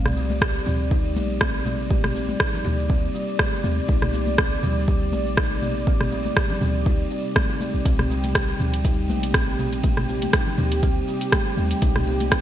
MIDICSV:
0, 0, Header, 1, 5, 480
1, 0, Start_track
1, 0, Tempo, 495868
1, 1843, Time_signature, 4, 2, 24, 8
1, 12014, End_track
2, 0, Start_track
2, 0, Title_t, "Analog synth pad"
2, 0, Program_c, 0, 89
2, 0, Note_on_c, 0, 48, 81
2, 0, Note_on_c, 0, 55, 70
2, 0, Note_on_c, 0, 74, 84
2, 7591, Note_off_c, 0, 74, 0
2, 7607, Note_on_c, 0, 67, 85
2, 12014, Note_off_c, 0, 48, 0
2, 12014, Note_off_c, 0, 55, 0
2, 12014, Note_off_c, 0, 67, 0
2, 12014, End_track
3, 0, Start_track
3, 0, Title_t, "Kalimba"
3, 0, Program_c, 1, 108
3, 162, Note_on_c, 1, 55, 74
3, 281, Note_off_c, 1, 55, 0
3, 404, Note_on_c, 1, 67, 77
3, 474, Note_off_c, 1, 67, 0
3, 641, Note_on_c, 1, 60, 74
3, 767, Note_off_c, 1, 60, 0
3, 882, Note_on_c, 1, 63, 101
3, 954, Note_off_c, 1, 63, 0
3, 1122, Note_on_c, 1, 58, 71
3, 1194, Note_off_c, 1, 58, 0
3, 1361, Note_on_c, 1, 60, 100
3, 1487, Note_off_c, 1, 60, 0
3, 1602, Note_on_c, 1, 55, 78
3, 1721, Note_off_c, 1, 55, 0
3, 1842, Note_on_c, 1, 67, 84
3, 1913, Note_off_c, 1, 67, 0
3, 2082, Note_on_c, 1, 60, 71
3, 2208, Note_off_c, 1, 60, 0
3, 2322, Note_on_c, 1, 63, 92
3, 2393, Note_off_c, 1, 63, 0
3, 2561, Note_on_c, 1, 58, 74
3, 2633, Note_off_c, 1, 58, 0
3, 2803, Note_on_c, 1, 60, 102
3, 2928, Note_off_c, 1, 60, 0
3, 3043, Note_on_c, 1, 55, 73
3, 3161, Note_off_c, 1, 55, 0
3, 3281, Note_on_c, 1, 67, 82
3, 3353, Note_off_c, 1, 67, 0
3, 3522, Note_on_c, 1, 60, 81
3, 3647, Note_off_c, 1, 60, 0
3, 3760, Note_on_c, 1, 63, 100
3, 3833, Note_off_c, 1, 63, 0
3, 4001, Note_on_c, 1, 58, 77
3, 4073, Note_off_c, 1, 58, 0
3, 4242, Note_on_c, 1, 60, 93
3, 4368, Note_off_c, 1, 60, 0
3, 4483, Note_on_c, 1, 55, 76
3, 4601, Note_off_c, 1, 55, 0
3, 4722, Note_on_c, 1, 67, 85
3, 4794, Note_off_c, 1, 67, 0
3, 4962, Note_on_c, 1, 60, 72
3, 5088, Note_off_c, 1, 60, 0
3, 5200, Note_on_c, 1, 63, 103
3, 5272, Note_off_c, 1, 63, 0
3, 5441, Note_on_c, 1, 58, 78
3, 5513, Note_off_c, 1, 58, 0
3, 5682, Note_on_c, 1, 60, 101
3, 5807, Note_off_c, 1, 60, 0
3, 5921, Note_on_c, 1, 55, 74
3, 6040, Note_off_c, 1, 55, 0
3, 6162, Note_on_c, 1, 67, 81
3, 6233, Note_off_c, 1, 67, 0
3, 6400, Note_on_c, 1, 60, 69
3, 6526, Note_off_c, 1, 60, 0
3, 6640, Note_on_c, 1, 63, 99
3, 6713, Note_off_c, 1, 63, 0
3, 6882, Note_on_c, 1, 60, 74
3, 6953, Note_off_c, 1, 60, 0
3, 7120, Note_on_c, 1, 60, 81
3, 7240, Note_off_c, 1, 60, 0
3, 7253, Note_on_c, 1, 63, 78
3, 7351, Note_off_c, 1, 63, 0
3, 7362, Note_on_c, 1, 60, 72
3, 7488, Note_off_c, 1, 60, 0
3, 7601, Note_on_c, 1, 60, 104
3, 7727, Note_off_c, 1, 60, 0
3, 7841, Note_on_c, 1, 55, 76
3, 7960, Note_off_c, 1, 55, 0
3, 8082, Note_on_c, 1, 67, 81
3, 8153, Note_off_c, 1, 67, 0
3, 8320, Note_on_c, 1, 60, 72
3, 8447, Note_off_c, 1, 60, 0
3, 8562, Note_on_c, 1, 63, 101
3, 8633, Note_off_c, 1, 63, 0
3, 8802, Note_on_c, 1, 58, 72
3, 8873, Note_off_c, 1, 58, 0
3, 9041, Note_on_c, 1, 60, 101
3, 9167, Note_off_c, 1, 60, 0
3, 9284, Note_on_c, 1, 55, 75
3, 9402, Note_off_c, 1, 55, 0
3, 9525, Note_on_c, 1, 67, 84
3, 9595, Note_off_c, 1, 67, 0
3, 9763, Note_on_c, 1, 60, 74
3, 9888, Note_off_c, 1, 60, 0
3, 10003, Note_on_c, 1, 63, 100
3, 10074, Note_off_c, 1, 63, 0
3, 10244, Note_on_c, 1, 58, 75
3, 10314, Note_off_c, 1, 58, 0
3, 10481, Note_on_c, 1, 60, 105
3, 10607, Note_off_c, 1, 60, 0
3, 10722, Note_on_c, 1, 55, 71
3, 10841, Note_off_c, 1, 55, 0
3, 10962, Note_on_c, 1, 67, 82
3, 11034, Note_off_c, 1, 67, 0
3, 11202, Note_on_c, 1, 60, 77
3, 11327, Note_off_c, 1, 60, 0
3, 11445, Note_on_c, 1, 63, 98
3, 11515, Note_off_c, 1, 63, 0
3, 11683, Note_on_c, 1, 58, 76
3, 11754, Note_off_c, 1, 58, 0
3, 11924, Note_on_c, 1, 60, 96
3, 12014, Note_off_c, 1, 60, 0
3, 12014, End_track
4, 0, Start_track
4, 0, Title_t, "808-style bass"
4, 0, Program_c, 2, 38
4, 0, Note_on_c, 2, 36, 100
4, 576, Note_off_c, 2, 36, 0
4, 642, Note_on_c, 2, 38, 92
4, 1124, Note_on_c, 2, 34, 96
4, 1138, Note_off_c, 2, 38, 0
4, 2257, Note_off_c, 2, 34, 0
4, 2565, Note_on_c, 2, 38, 91
4, 2977, Note_off_c, 2, 38, 0
4, 3524, Note_on_c, 2, 39, 105
4, 3680, Note_off_c, 2, 39, 0
4, 3765, Note_on_c, 2, 36, 95
4, 4417, Note_off_c, 2, 36, 0
4, 4483, Note_on_c, 2, 38, 93
4, 4965, Note_on_c, 2, 34, 99
4, 4979, Note_off_c, 2, 38, 0
4, 6097, Note_off_c, 2, 34, 0
4, 6403, Note_on_c, 2, 38, 94
4, 6816, Note_off_c, 2, 38, 0
4, 7494, Note_on_c, 2, 34, 87
4, 7561, Note_off_c, 2, 34, 0
4, 7604, Note_on_c, 2, 36, 101
4, 8257, Note_off_c, 2, 36, 0
4, 8323, Note_on_c, 2, 38, 90
4, 8806, Note_on_c, 2, 34, 98
4, 8820, Note_off_c, 2, 38, 0
4, 9937, Note_off_c, 2, 34, 0
4, 10243, Note_on_c, 2, 38, 94
4, 10656, Note_off_c, 2, 38, 0
4, 11205, Note_on_c, 2, 39, 105
4, 11361, Note_off_c, 2, 39, 0
4, 11444, Note_on_c, 2, 36, 100
4, 12014, Note_off_c, 2, 36, 0
4, 12014, End_track
5, 0, Start_track
5, 0, Title_t, "Drums"
5, 53, Note_on_c, 9, 63, 94
5, 54, Note_on_c, 9, 37, 61
5, 54, Note_on_c, 9, 45, 75
5, 150, Note_off_c, 9, 63, 0
5, 151, Note_off_c, 9, 37, 0
5, 151, Note_off_c, 9, 45, 0
5, 164, Note_on_c, 9, 82, 94
5, 261, Note_off_c, 9, 82, 0
5, 290, Note_on_c, 9, 63, 94
5, 295, Note_on_c, 9, 82, 51
5, 387, Note_off_c, 9, 63, 0
5, 392, Note_off_c, 9, 82, 0
5, 402, Note_on_c, 9, 36, 118
5, 404, Note_on_c, 9, 37, 116
5, 406, Note_on_c, 9, 82, 41
5, 499, Note_off_c, 9, 36, 0
5, 501, Note_off_c, 9, 37, 0
5, 503, Note_off_c, 9, 82, 0
5, 639, Note_on_c, 9, 64, 90
5, 645, Note_on_c, 9, 45, 81
5, 647, Note_on_c, 9, 82, 90
5, 736, Note_off_c, 9, 64, 0
5, 742, Note_off_c, 9, 45, 0
5, 744, Note_off_c, 9, 82, 0
5, 779, Note_on_c, 9, 82, 54
5, 876, Note_off_c, 9, 82, 0
5, 883, Note_on_c, 9, 36, 113
5, 886, Note_on_c, 9, 82, 38
5, 980, Note_off_c, 9, 36, 0
5, 983, Note_off_c, 9, 82, 0
5, 1124, Note_on_c, 9, 82, 92
5, 1127, Note_on_c, 9, 63, 100
5, 1221, Note_off_c, 9, 82, 0
5, 1223, Note_off_c, 9, 63, 0
5, 1257, Note_on_c, 9, 82, 55
5, 1354, Note_off_c, 9, 82, 0
5, 1363, Note_on_c, 9, 37, 107
5, 1364, Note_on_c, 9, 36, 113
5, 1366, Note_on_c, 9, 82, 38
5, 1373, Note_on_c, 9, 63, 99
5, 1460, Note_off_c, 9, 37, 0
5, 1461, Note_off_c, 9, 36, 0
5, 1462, Note_off_c, 9, 82, 0
5, 1470, Note_off_c, 9, 63, 0
5, 1601, Note_on_c, 9, 63, 100
5, 1604, Note_on_c, 9, 45, 77
5, 1606, Note_on_c, 9, 82, 87
5, 1698, Note_off_c, 9, 63, 0
5, 1701, Note_off_c, 9, 45, 0
5, 1703, Note_off_c, 9, 82, 0
5, 1737, Note_on_c, 9, 82, 56
5, 1834, Note_off_c, 9, 82, 0
5, 1844, Note_on_c, 9, 36, 124
5, 1845, Note_on_c, 9, 63, 70
5, 1845, Note_on_c, 9, 82, 39
5, 1941, Note_off_c, 9, 36, 0
5, 1941, Note_off_c, 9, 82, 0
5, 1942, Note_off_c, 9, 63, 0
5, 1975, Note_on_c, 9, 37, 64
5, 1975, Note_on_c, 9, 45, 79
5, 1981, Note_on_c, 9, 63, 92
5, 2072, Note_off_c, 9, 37, 0
5, 2072, Note_off_c, 9, 45, 0
5, 2077, Note_off_c, 9, 63, 0
5, 2086, Note_on_c, 9, 82, 96
5, 2183, Note_off_c, 9, 82, 0
5, 2214, Note_on_c, 9, 63, 100
5, 2217, Note_on_c, 9, 82, 55
5, 2311, Note_off_c, 9, 63, 0
5, 2314, Note_off_c, 9, 82, 0
5, 2323, Note_on_c, 9, 37, 113
5, 2324, Note_on_c, 9, 36, 126
5, 2325, Note_on_c, 9, 82, 42
5, 2420, Note_off_c, 9, 37, 0
5, 2421, Note_off_c, 9, 36, 0
5, 2422, Note_off_c, 9, 82, 0
5, 2462, Note_on_c, 9, 64, 86
5, 2559, Note_off_c, 9, 64, 0
5, 2561, Note_on_c, 9, 64, 102
5, 2562, Note_on_c, 9, 45, 85
5, 2564, Note_on_c, 9, 82, 95
5, 2658, Note_off_c, 9, 64, 0
5, 2659, Note_off_c, 9, 45, 0
5, 2661, Note_off_c, 9, 82, 0
5, 2698, Note_on_c, 9, 82, 56
5, 2795, Note_off_c, 9, 82, 0
5, 2804, Note_on_c, 9, 36, 122
5, 2807, Note_on_c, 9, 82, 41
5, 2901, Note_off_c, 9, 36, 0
5, 2904, Note_off_c, 9, 82, 0
5, 3046, Note_on_c, 9, 82, 98
5, 3142, Note_off_c, 9, 82, 0
5, 3180, Note_on_c, 9, 82, 59
5, 3277, Note_off_c, 9, 82, 0
5, 3284, Note_on_c, 9, 36, 126
5, 3284, Note_on_c, 9, 37, 107
5, 3286, Note_on_c, 9, 82, 42
5, 3288, Note_on_c, 9, 63, 99
5, 3381, Note_off_c, 9, 36, 0
5, 3381, Note_off_c, 9, 37, 0
5, 3383, Note_off_c, 9, 82, 0
5, 3385, Note_off_c, 9, 63, 0
5, 3524, Note_on_c, 9, 63, 94
5, 3527, Note_on_c, 9, 82, 97
5, 3620, Note_off_c, 9, 63, 0
5, 3624, Note_off_c, 9, 82, 0
5, 3658, Note_on_c, 9, 82, 55
5, 3755, Note_off_c, 9, 82, 0
5, 3764, Note_on_c, 9, 36, 127
5, 3766, Note_on_c, 9, 82, 39
5, 3769, Note_on_c, 9, 63, 62
5, 3861, Note_off_c, 9, 36, 0
5, 3863, Note_off_c, 9, 82, 0
5, 3866, Note_off_c, 9, 63, 0
5, 3893, Note_on_c, 9, 37, 63
5, 3893, Note_on_c, 9, 45, 80
5, 3900, Note_on_c, 9, 63, 99
5, 3990, Note_off_c, 9, 37, 0
5, 3990, Note_off_c, 9, 45, 0
5, 3997, Note_off_c, 9, 63, 0
5, 4005, Note_on_c, 9, 82, 98
5, 4102, Note_off_c, 9, 82, 0
5, 4133, Note_on_c, 9, 63, 101
5, 4137, Note_on_c, 9, 82, 54
5, 4230, Note_off_c, 9, 63, 0
5, 4234, Note_off_c, 9, 82, 0
5, 4243, Note_on_c, 9, 37, 116
5, 4244, Note_on_c, 9, 36, 127
5, 4245, Note_on_c, 9, 82, 42
5, 4339, Note_off_c, 9, 37, 0
5, 4341, Note_off_c, 9, 36, 0
5, 4342, Note_off_c, 9, 82, 0
5, 4482, Note_on_c, 9, 45, 88
5, 4485, Note_on_c, 9, 64, 86
5, 4485, Note_on_c, 9, 82, 97
5, 4579, Note_off_c, 9, 45, 0
5, 4581, Note_off_c, 9, 82, 0
5, 4582, Note_off_c, 9, 64, 0
5, 4617, Note_on_c, 9, 82, 55
5, 4713, Note_off_c, 9, 82, 0
5, 4723, Note_on_c, 9, 36, 120
5, 4723, Note_on_c, 9, 82, 43
5, 4820, Note_off_c, 9, 36, 0
5, 4820, Note_off_c, 9, 82, 0
5, 4961, Note_on_c, 9, 63, 112
5, 4962, Note_on_c, 9, 82, 92
5, 5058, Note_off_c, 9, 63, 0
5, 5059, Note_off_c, 9, 82, 0
5, 5095, Note_on_c, 9, 82, 57
5, 5192, Note_off_c, 9, 82, 0
5, 5202, Note_on_c, 9, 37, 105
5, 5202, Note_on_c, 9, 63, 101
5, 5203, Note_on_c, 9, 36, 127
5, 5204, Note_on_c, 9, 82, 42
5, 5299, Note_off_c, 9, 37, 0
5, 5299, Note_off_c, 9, 63, 0
5, 5300, Note_off_c, 9, 36, 0
5, 5301, Note_off_c, 9, 82, 0
5, 5440, Note_on_c, 9, 63, 91
5, 5441, Note_on_c, 9, 45, 90
5, 5443, Note_on_c, 9, 82, 94
5, 5537, Note_off_c, 9, 45, 0
5, 5537, Note_off_c, 9, 63, 0
5, 5539, Note_off_c, 9, 82, 0
5, 5575, Note_on_c, 9, 82, 59
5, 5672, Note_off_c, 9, 82, 0
5, 5683, Note_on_c, 9, 36, 123
5, 5683, Note_on_c, 9, 82, 39
5, 5685, Note_on_c, 9, 63, 62
5, 5780, Note_off_c, 9, 36, 0
5, 5780, Note_off_c, 9, 82, 0
5, 5782, Note_off_c, 9, 63, 0
5, 5811, Note_on_c, 9, 63, 92
5, 5814, Note_on_c, 9, 37, 62
5, 5814, Note_on_c, 9, 45, 83
5, 5907, Note_off_c, 9, 63, 0
5, 5911, Note_off_c, 9, 37, 0
5, 5911, Note_off_c, 9, 45, 0
5, 5924, Note_on_c, 9, 82, 98
5, 6021, Note_off_c, 9, 82, 0
5, 6055, Note_on_c, 9, 63, 85
5, 6056, Note_on_c, 9, 82, 52
5, 6152, Note_off_c, 9, 63, 0
5, 6152, Note_off_c, 9, 82, 0
5, 6162, Note_on_c, 9, 36, 126
5, 6162, Note_on_c, 9, 37, 107
5, 6164, Note_on_c, 9, 82, 42
5, 6259, Note_off_c, 9, 36, 0
5, 6259, Note_off_c, 9, 37, 0
5, 6261, Note_off_c, 9, 82, 0
5, 6295, Note_on_c, 9, 64, 89
5, 6392, Note_off_c, 9, 64, 0
5, 6399, Note_on_c, 9, 64, 88
5, 6402, Note_on_c, 9, 45, 91
5, 6404, Note_on_c, 9, 82, 100
5, 6496, Note_off_c, 9, 64, 0
5, 6498, Note_off_c, 9, 45, 0
5, 6501, Note_off_c, 9, 82, 0
5, 6535, Note_on_c, 9, 82, 55
5, 6632, Note_off_c, 9, 82, 0
5, 6642, Note_on_c, 9, 36, 127
5, 6644, Note_on_c, 9, 82, 42
5, 6739, Note_off_c, 9, 36, 0
5, 6740, Note_off_c, 9, 82, 0
5, 6885, Note_on_c, 9, 82, 97
5, 6982, Note_off_c, 9, 82, 0
5, 7016, Note_on_c, 9, 82, 58
5, 7113, Note_off_c, 9, 82, 0
5, 7123, Note_on_c, 9, 36, 127
5, 7123, Note_on_c, 9, 37, 97
5, 7125, Note_on_c, 9, 63, 114
5, 7126, Note_on_c, 9, 82, 41
5, 7220, Note_off_c, 9, 36, 0
5, 7220, Note_off_c, 9, 37, 0
5, 7222, Note_off_c, 9, 63, 0
5, 7222, Note_off_c, 9, 82, 0
5, 7363, Note_on_c, 9, 63, 103
5, 7365, Note_on_c, 9, 82, 98
5, 7460, Note_off_c, 9, 63, 0
5, 7462, Note_off_c, 9, 82, 0
5, 7498, Note_on_c, 9, 82, 56
5, 7595, Note_off_c, 9, 82, 0
5, 7603, Note_on_c, 9, 36, 124
5, 7604, Note_on_c, 9, 42, 46
5, 7606, Note_on_c, 9, 63, 70
5, 7606, Note_on_c, 9, 82, 41
5, 7700, Note_off_c, 9, 36, 0
5, 7701, Note_off_c, 9, 42, 0
5, 7703, Note_off_c, 9, 63, 0
5, 7703, Note_off_c, 9, 82, 0
5, 7733, Note_on_c, 9, 63, 87
5, 7736, Note_on_c, 9, 37, 57
5, 7736, Note_on_c, 9, 45, 81
5, 7830, Note_off_c, 9, 63, 0
5, 7833, Note_off_c, 9, 37, 0
5, 7833, Note_off_c, 9, 45, 0
5, 7845, Note_on_c, 9, 82, 92
5, 7942, Note_off_c, 9, 82, 0
5, 7974, Note_on_c, 9, 42, 56
5, 7976, Note_on_c, 9, 82, 51
5, 7981, Note_on_c, 9, 63, 86
5, 8071, Note_off_c, 9, 42, 0
5, 8073, Note_off_c, 9, 82, 0
5, 8077, Note_off_c, 9, 63, 0
5, 8083, Note_on_c, 9, 36, 120
5, 8084, Note_on_c, 9, 37, 104
5, 8084, Note_on_c, 9, 42, 46
5, 8087, Note_on_c, 9, 82, 41
5, 8180, Note_off_c, 9, 36, 0
5, 8181, Note_off_c, 9, 37, 0
5, 8181, Note_off_c, 9, 42, 0
5, 8183, Note_off_c, 9, 82, 0
5, 8324, Note_on_c, 9, 45, 90
5, 8324, Note_on_c, 9, 64, 81
5, 8326, Note_on_c, 9, 82, 91
5, 8421, Note_off_c, 9, 45, 0
5, 8421, Note_off_c, 9, 64, 0
5, 8423, Note_off_c, 9, 82, 0
5, 8456, Note_on_c, 9, 42, 57
5, 8459, Note_on_c, 9, 82, 51
5, 8553, Note_off_c, 9, 42, 0
5, 8555, Note_off_c, 9, 82, 0
5, 8564, Note_on_c, 9, 36, 118
5, 8565, Note_on_c, 9, 42, 46
5, 8567, Note_on_c, 9, 82, 39
5, 8660, Note_off_c, 9, 36, 0
5, 8662, Note_off_c, 9, 42, 0
5, 8664, Note_off_c, 9, 82, 0
5, 8807, Note_on_c, 9, 63, 97
5, 8808, Note_on_c, 9, 82, 95
5, 8903, Note_off_c, 9, 63, 0
5, 8905, Note_off_c, 9, 82, 0
5, 8937, Note_on_c, 9, 42, 57
5, 8939, Note_on_c, 9, 82, 56
5, 9034, Note_off_c, 9, 42, 0
5, 9036, Note_off_c, 9, 82, 0
5, 9042, Note_on_c, 9, 63, 112
5, 9043, Note_on_c, 9, 36, 120
5, 9043, Note_on_c, 9, 37, 99
5, 9043, Note_on_c, 9, 42, 44
5, 9045, Note_on_c, 9, 82, 39
5, 9139, Note_off_c, 9, 63, 0
5, 9140, Note_off_c, 9, 36, 0
5, 9140, Note_off_c, 9, 37, 0
5, 9140, Note_off_c, 9, 42, 0
5, 9142, Note_off_c, 9, 82, 0
5, 9283, Note_on_c, 9, 45, 85
5, 9285, Note_on_c, 9, 82, 96
5, 9288, Note_on_c, 9, 63, 88
5, 9380, Note_off_c, 9, 45, 0
5, 9382, Note_off_c, 9, 82, 0
5, 9385, Note_off_c, 9, 63, 0
5, 9414, Note_on_c, 9, 42, 57
5, 9416, Note_on_c, 9, 82, 52
5, 9511, Note_off_c, 9, 42, 0
5, 9513, Note_off_c, 9, 82, 0
5, 9520, Note_on_c, 9, 42, 47
5, 9523, Note_on_c, 9, 36, 114
5, 9523, Note_on_c, 9, 82, 37
5, 9524, Note_on_c, 9, 63, 60
5, 9617, Note_off_c, 9, 42, 0
5, 9619, Note_off_c, 9, 82, 0
5, 9620, Note_off_c, 9, 36, 0
5, 9621, Note_off_c, 9, 63, 0
5, 9652, Note_on_c, 9, 63, 84
5, 9653, Note_on_c, 9, 37, 57
5, 9653, Note_on_c, 9, 45, 84
5, 9749, Note_off_c, 9, 63, 0
5, 9750, Note_off_c, 9, 37, 0
5, 9750, Note_off_c, 9, 45, 0
5, 9763, Note_on_c, 9, 82, 90
5, 9860, Note_off_c, 9, 82, 0
5, 9894, Note_on_c, 9, 42, 55
5, 9896, Note_on_c, 9, 82, 54
5, 9902, Note_on_c, 9, 63, 90
5, 9990, Note_off_c, 9, 42, 0
5, 9993, Note_off_c, 9, 82, 0
5, 9999, Note_off_c, 9, 63, 0
5, 10002, Note_on_c, 9, 37, 101
5, 10002, Note_on_c, 9, 42, 49
5, 10004, Note_on_c, 9, 36, 120
5, 10004, Note_on_c, 9, 82, 39
5, 10099, Note_off_c, 9, 37, 0
5, 10099, Note_off_c, 9, 42, 0
5, 10100, Note_off_c, 9, 36, 0
5, 10101, Note_off_c, 9, 82, 0
5, 10135, Note_on_c, 9, 64, 78
5, 10232, Note_off_c, 9, 64, 0
5, 10242, Note_on_c, 9, 45, 86
5, 10244, Note_on_c, 9, 82, 93
5, 10245, Note_on_c, 9, 64, 92
5, 10339, Note_off_c, 9, 45, 0
5, 10341, Note_off_c, 9, 64, 0
5, 10341, Note_off_c, 9, 82, 0
5, 10374, Note_on_c, 9, 42, 58
5, 10376, Note_on_c, 9, 82, 53
5, 10471, Note_off_c, 9, 42, 0
5, 10473, Note_off_c, 9, 82, 0
5, 10482, Note_on_c, 9, 42, 45
5, 10483, Note_on_c, 9, 36, 114
5, 10484, Note_on_c, 9, 82, 38
5, 10578, Note_off_c, 9, 42, 0
5, 10580, Note_off_c, 9, 36, 0
5, 10581, Note_off_c, 9, 82, 0
5, 10724, Note_on_c, 9, 82, 93
5, 10821, Note_off_c, 9, 82, 0
5, 10853, Note_on_c, 9, 42, 61
5, 10855, Note_on_c, 9, 82, 53
5, 10950, Note_off_c, 9, 42, 0
5, 10952, Note_off_c, 9, 82, 0
5, 10960, Note_on_c, 9, 63, 107
5, 10962, Note_on_c, 9, 37, 97
5, 10962, Note_on_c, 9, 42, 45
5, 10963, Note_on_c, 9, 36, 115
5, 10964, Note_on_c, 9, 82, 35
5, 11057, Note_off_c, 9, 63, 0
5, 11058, Note_off_c, 9, 37, 0
5, 11058, Note_off_c, 9, 42, 0
5, 11060, Note_off_c, 9, 36, 0
5, 11061, Note_off_c, 9, 82, 0
5, 11200, Note_on_c, 9, 63, 86
5, 11203, Note_on_c, 9, 82, 85
5, 11297, Note_off_c, 9, 63, 0
5, 11300, Note_off_c, 9, 82, 0
5, 11334, Note_on_c, 9, 42, 63
5, 11336, Note_on_c, 9, 82, 53
5, 11430, Note_off_c, 9, 42, 0
5, 11433, Note_off_c, 9, 82, 0
5, 11442, Note_on_c, 9, 42, 48
5, 11443, Note_on_c, 9, 36, 117
5, 11443, Note_on_c, 9, 63, 67
5, 11444, Note_on_c, 9, 82, 39
5, 11538, Note_off_c, 9, 42, 0
5, 11540, Note_off_c, 9, 36, 0
5, 11540, Note_off_c, 9, 63, 0
5, 11540, Note_off_c, 9, 82, 0
5, 11574, Note_on_c, 9, 37, 58
5, 11574, Note_on_c, 9, 45, 75
5, 11579, Note_on_c, 9, 63, 86
5, 11671, Note_off_c, 9, 37, 0
5, 11671, Note_off_c, 9, 45, 0
5, 11676, Note_off_c, 9, 63, 0
5, 11683, Note_on_c, 9, 82, 87
5, 11779, Note_off_c, 9, 82, 0
5, 11813, Note_on_c, 9, 42, 59
5, 11815, Note_on_c, 9, 82, 50
5, 11816, Note_on_c, 9, 63, 91
5, 11910, Note_off_c, 9, 42, 0
5, 11912, Note_off_c, 9, 82, 0
5, 11913, Note_off_c, 9, 63, 0
5, 11922, Note_on_c, 9, 37, 104
5, 11922, Note_on_c, 9, 42, 47
5, 11923, Note_on_c, 9, 36, 118
5, 11924, Note_on_c, 9, 82, 39
5, 12014, Note_off_c, 9, 36, 0
5, 12014, Note_off_c, 9, 37, 0
5, 12014, Note_off_c, 9, 42, 0
5, 12014, Note_off_c, 9, 82, 0
5, 12014, End_track
0, 0, End_of_file